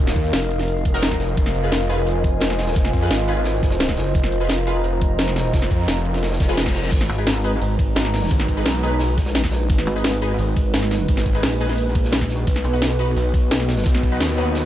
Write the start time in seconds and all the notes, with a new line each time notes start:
Already playing: D#4 F#4 A#4 D#5 F5
0.00 D#1
0.07 snare, closed hi-hat
0.16 D#2, kick, closed hi-hat, cabasa
0.24 closed hi-hat, cabasa
0.33 F1, snare, closed hi-hat
0.51 closed hi-hat, cabasa
0.59 snare, closed hi-hat, cabasa
0.68 closed hi-hat
0.77 closed hi-hat
0.85 kick, closed hi-hat, cabasa
0.94 D#4 F#4 A#4, snare
1.02 snare, closed hi-hat, cabasa
1.11 kick, snare
1.20 snare, closed hi-hat, cabasa
1.29 closed hi-hat
1.37 F1 F4 C5, kick, closed hi-hat
1.46 snare, closed hi-hat
1.55 F1, closed hi-hat, cabasa
1.63 F4 G#4 B4 G#5
1.72 snare, closed hi-hat
1.89 F4 G#4 B4, closed hi-hat, cabasa
1.98 closed hi-hat
2.07 F1, closed hi-hat
2.24 kick, closed hi-hat, cabasa
2.40 F1, snare, closed hi-hat, cabasa
2.50 snare
2.59 snare, closed hi-hat, cabasa
2.67 snare, closed hi-hat
2.71 snare, closed hi-hat
2.75 F1, kick, closed hi-hat
2.85 snare, closed hi-hat
2.93 F2, kick, closed hi-hat, cabasa
3.02 F4 G#4 B4
3.10 G#1, snare, closed hi-hat
3.19 closed hi-hat
3.28 F4 G#4 B4, closed hi-hat, cabasa
3.37 closed hi-hat
3.44 snare, closed hi-hat
3.62 kick, snare, closed hi-hat, cabasa
3.71 snare, closed hi-hat
3.80 snare, closed hi-hat, cabasa
3.88 kick, snare, closed hi-hat
3.97 F#1, snare, closed hi-hat, cabasa
4.06 closed hi-hat
4.10 A#5, closed hi-hat
4.15 F1, kick, closed hi-hat
4.23 snare, closed hi-hat
4.32 F1, closed hi-hat, cabasa
4.41 F4 G#4 B4
4.49 snare, closed hi-hat
4.67 F4 G#4 B4, closed hi-hat, cabasa
4.75 closed hi-hat
4.84 F1, closed hi-hat
5.01 kick, closed hi-hat, cabasa
5.19 F1, snare, closed hi-hat, cabasa
5.28 snare
5.36 snare, closed hi-hat, cabasa
5.45 closed hi-hat
5.53 F1, kick, snare, closed hi-hat
5.62 snare, closed hi-hat
5.71 F2, kick, closed hi-hat, cabasa
5.79 cabasa
5.88 F1, snare, closed hi-hat
5.97 closed hi-hat
6.05 closed hi-hat, cabasa
6.14 snare, closed hi-hat, cabasa
6.23 snare, closed hi-hat, reverse cymbal
6.31 snare, closed hi-hat
6.40 F1, kick, snare, closed hi-hat, cabasa
6.48 F4 G#4 B4, snare, closed hi-hat
6.57 snare, closed hi-hat, cabasa
6.66 kick, snare, closed hi-hat
6.75 snare, closed hi-hat, cabasa
6.83 snare, closed hi-hat
6.88 snare, closed hi-hat
6.92 G#1 G#3 D#4 F#4 A#5, kick, closed hi-hat, crash, ride
7.01 B4, snare, closed hi-hat
7.09 G#1, closed hi-hat, ride, cabasa
7.18 D#4 G#4 B4
7.27 snare, closed hi-hat, ride
7.44 D#4 G#4 B4, closed hi-hat, ride, cabasa
7.53 closed hi-hat
7.62 G#1, closed hi-hat, ride
7.79 kick, closed hi-hat, ride, cabasa
7.96 G#1, snare, closed hi-hat, ride, cabasa
8.05 snare
8.14 snare, closed hi-hat, ride, cabasa
8.22 snare, closed hi-hat
8.26 snare, closed hi-hat
8.31 G#1, kick, closed hi-hat, ride
8.40 snare, closed hi-hat
8.48 G#1, kick, closed hi-hat, ride, cabasa
8.57 D#4 G#4 B4
8.66 B1, snare, closed hi-hat, ride
8.83 D#4 G#4 B4, closed hi-hat, ride, cabasa
8.92 closed hi-hat
9.00 snare, closed hi-hat, ride
9.17 kick, snare, closed hi-hat, ride, cabasa
9.26 A#1, snare, closed hi-hat
9.35 snare, closed hi-hat, ride, cabasa
9.44 kick, snare, closed hi-hat
9.52 A#1, snare, closed hi-hat, ride, cabasa
9.61 closed hi-hat
9.70 G#1 B4, kick, closed hi-hat, ride
9.78 snare, closed hi-hat
9.87 G#1, closed hi-hat, ride, cabasa
9.96 D#4 G#4 B4
10.04 snare, closed hi-hat, ride
10.22 D#4 G#4 B4, closed hi-hat, ride, cabasa
10.30 closed hi-hat
10.39 G#1, closed hi-hat, ride
10.56 kick, closed hi-hat, ride, cabasa
10.73 G#1, snare, closed hi-hat, ride, cabasa
10.82 snare
10.91 snare, closed hi-hat, ride, cabasa
11.00 closed hi-hat
11.08 G#1, kick, closed hi-hat, ride
11.17 snare, closed hi-hat
11.26 G#1, kick, closed hi-hat, ride, cabasa
11.34 D#4 G#4 B4, closed hi-hat, cabasa
11.43 A#1, snare, closed hi-hat, ride
11.60 D#4 G#4 B4, closed hi-hat, ride, cabasa
11.69 snare, closed hi-hat, cabasa
11.78 closed hi-hat, ride
11.88 closed hi-hat
11.95 kick, closed hi-hat, ride, cabasa
12.04 snare
12.12 snare, closed hi-hat, ride, cabasa
12.21 kick, snare
12.30 snare, closed hi-hat, ride, cabasa
12.39 closed hi-hat
12.47 B1 B3 F#4, kick, closed hi-hat, ride
12.56 snare, closed hi-hat
12.64 B1, closed hi-hat, ride, cabasa
12.73 D#4 F#4 B4
12.82 snare, closed hi-hat, ride
12.90 D#5
12.99 D#4 F#4 B4, closed hi-hat, ride, cabasa
13.08 closed hi-hat
13.16 B1, closed hi-hat, ride
13.34 kick, closed hi-hat, ride, cabasa
13.51 B1, snare, closed hi-hat, ride, cabasa
13.60 snare
13.69 snare, closed hi-hat, ride, cabasa
13.77 snare, closed hi-hat
13.82 B1, kick, snare, closed hi-hat
13.86 closed hi-hat, ride
13.95 snare, closed hi-hat
14.03 B1, kick, closed hi-hat, ride, cabasa
14.12 D#4 F#4 B4
14.20 D#2, snare, closed hi-hat, ride
14.37 D#4 F#4 B4, closed hi-hat, ride, cabasa
14.47 closed hi-hat
14.55 snare, closed hi-hat, ride